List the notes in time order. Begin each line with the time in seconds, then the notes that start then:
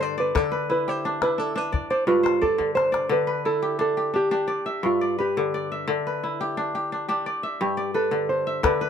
Already playing: G2 D3 D4 D5
0.01 C5 D5
0.18 B4 D5
0.35 D3 A4, calabash thump, calabash click
0.52 B4
0.70 E4 B4
0.88 G4 C5, calabash click
1.05 D4
1.22 E4 B4, calabash click
1.38 D4 A4, calabash click
1.56 D4 B4
1.72 D5, calabash thump
1.90 C5 D5
2.07 G2 F4 B4
2.23 C5, calabash click
2.41 A4 D5, calabash thump
2.58 D3, calabash thump
2.75 C5, calabash click
2.92 D5, calabash click
3.09 D3 B4
3.27 B4
3.45 E4 A4
3.62 G4
3.79 D4 A4
3.97 G4
4.14 D4 G4
4.31 D4 G4
4.48 D5
4.66 E5
4.83 G2 F4
5.01 D5
5.19 G4 B4
5.37 D3
5.54 D5
5.72 E5
5.88 D3
6.07 B4
6.24 E4
6.41 G4
6.57 D4
6.75 G4
6.92 D4
7.08 D4 G4
7.26 D5
7.43 E5
7.61 G2 G4
7.77 D5
7.94 A4 B4
8.11 D3
8.29 C5
8.47 E5
8.63 D3 B4, calabash thump, calabash click
8.81 B4